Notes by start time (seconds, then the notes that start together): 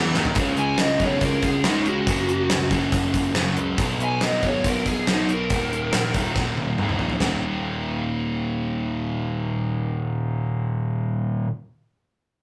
Already playing: E2 E3
0.14 D#2 D#3, snare
0.25 floor tom
0.35 C#2 C#3 G#3, kick, closed hi-hat
0.40 C#4
0.57 C#2 G#5, closed hi-hat
0.78 C#2 D#5, snare, closed hi-hat
1.00 B1 G#3 C#4, kick, closed hi-hat
1.04 C#3 C#5
1.21 C#2 A#4, kick, closed hi-hat
1.42 G#4, kick, closed hi-hat
1.64 C#2 C#3 G#3 D#4, snare, closed hi-hat
1.68 C#4
1.86 F#4, closed hi-hat
2.06 F#1 F#2 C#3 F#3, kick, closed hi-hat
2.29 closed hi-hat
2.50 C#2, snare, closed hi-hat
2.71 F#1 F#2 C#3 F#3, kick, closed hi-hat
2.92 F#1, kick, closed hi-hat
3.14 F#1, kick, closed hi-hat
3.35 F#1 F#2 C#3 F#3, snare, closed hi-hat
3.57 C#2, closed hi-hat
3.78 B1 B2 F#3 B3, kick, closed hi-hat
3.99 B1, closed hi-hat
4.04 G#5
4.21 B1 D#5, snare, closed hi-hat
4.43 G#1 B2 F#3 B3 C#5, kick, closed hi-hat
4.64 B1, kick, closed hi-hat
4.69 A#4
4.86 G#4, kick, closed hi-hat
5.07 B1 B2 F#3 B3 D#4, snare, closed hi-hat
5.29 A#4, closed hi-hat
5.50 D#1 D#2 A#2 D#3, kick, closed hi-hat
5.73 closed hi-hat
5.93 A#1, snare, closed hi-hat
6.14 D#1 D#2 A#2 D#3, kick, closed hi-hat
6.35 D#1, kick, snare
6.57 D#1, high tom
6.78 D#1 D#2 A#2, mid tom
6.83 D#3
6.89 mid tom
6.99 A#1, floor tom
7.10 floor tom
7.20 D#1 D#2 A#2 D#3, snare, floor tom